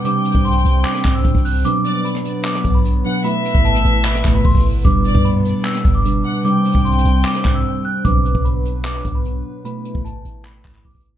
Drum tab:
HH |x-----------x---x---x---x---x---x---x-----------x-----------------------x-----------o-----------|x-----------x-----------x-----------x-----------x-----------x-----------x-----------------------|x-----------x-----------x-----------x-----------x-----------------------x--x--x--x--o-----------|x-----------x-----------x-----------x-----------x-----------x-----------x-----------------------|
CP |------------------------------------------------x-----------x-----------------------------------|------------------------------------------------x-----------------------------------------------|------------------------------------------------x-----------x-----------------------------------|------------------------------------------------x-----------------------------------------------|
SD |------------------------------------------------------r-----------------------------------------|------------------------------r-----------------------r-----------------------------------------|------------------------------r-----------------------r-----------------------------------------|------------------------------------------------------r-----------------------------------------|
BD |------------------o-----------------------------------------o-----------o-----o-----------------|------------------------------------------------------------o-----------------------------------|------------------o-----------------------------------------o-----------o-----o-----------------|o-----------------o-----------------------------------------o-----------------------------------|

HH |x-----------x---x---x---x---x---x---x-----------x-----------------------------------------------|x-----------x-----------x-----------x-----------x-----------x-----------x-----------------------|x-----------x-----------x-----------x-----------x-----------------------x--x--x--x--x-----------|
CP |------------------------------------------------x-----------x-----------------------------------|------------------------------------------------x-----------------------------------------------|------------------------------------------------x-----------x-----x-----------------------------|
SD |------------------------------------------------------r-----------------------------------------|------------------------------------------------------------------------------------------------|------------------------------------------------------------------------------------------------|
BD |------------------o-----------------------------------------o-----------------------------------|o-----------------o-----------------------------------------o-----------------------------------|------------------o-----------------------------------------o-----------o-----o-----------------|